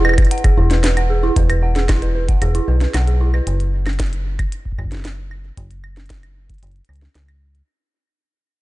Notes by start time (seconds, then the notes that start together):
Already playing: E1
0.05 B4, claves
0.09 claves
0.14 claves
0.18 B4, kick, closed hi-hat, claves
0.22 closed hi-hat, claves
0.27 claves
0.31 F#5, closed hi-hat
0.38 closed hi-hat
0.44 G#4, kick, closed hi-hat, claves
0.57 E1 E4
0.71 B4, snare, closed hi-hat
0.84 B4, snare, closed hi-hat
0.97 F#5, closed hi-hat, claves
1.10 G#4
1.23 E4
1.36 E1 B4, kick, closed hi-hat
1.50 B4, closed hi-hat, claves
1.63 F#5
1.76 G#4, snare, closed hi-hat
1.89 E4, kick, snare, closed hi-hat, claves
2.02 B4, closed hi-hat
2.15 B4
2.28 F#5, kick, closed hi-hat
2.42 E1 G#4, closed hi-hat, claves
2.55 E4, closed hi-hat
2.68 B1 B4
2.81 B4, snare, closed hi-hat
2.94 B1 F#5, snare, closed hi-hat, claves
3.07 G#4, closed hi-hat
3.21 E4
3.34 B4, claves
3.47 F#1, closed hi-hat
3.60 closed hi-hat
3.86 snare, closed hi-hat, claves
3.93 closed hi-hat
4.00 kick, snare, closed hi-hat
4.06 closed hi-hat
4.13 closed hi-hat
4.39 kick, closed hi-hat, claves
4.52 closed hi-hat
4.65 kick
4.72 kick
4.79 F#1, kick, claves
4.85 kick
4.92 snare, closed hi-hat
4.94 snare
4.97 snare
5.00 snare
5.02 snare
5.05 snare, closed hi-hat
5.31 claves
5.57 F#1, kick, closed hi-hat
5.71 closed hi-hat
5.84 claves
5.97 snare, closed hi-hat
6.06 closed hi-hat
6.10 kick, snare, closed hi-hat
6.14 closed hi-hat
6.23 closed hi-hat, claves
6.50 kick, closed hi-hat
6.54 closed hi-hat
6.58 closed hi-hat
6.63 F#1, closed hi-hat
6.67 closed hi-hat
6.71 closed hi-hat
6.76 closed hi-hat
6.85 closed hi-hat
6.89 C#2, claves
6.93 closed hi-hat
6.96 closed hi-hat
7.02 snare
7.15 C#2, snare, closed hi-hat
7.28 closed hi-hat, claves
7.55 closed hi-hat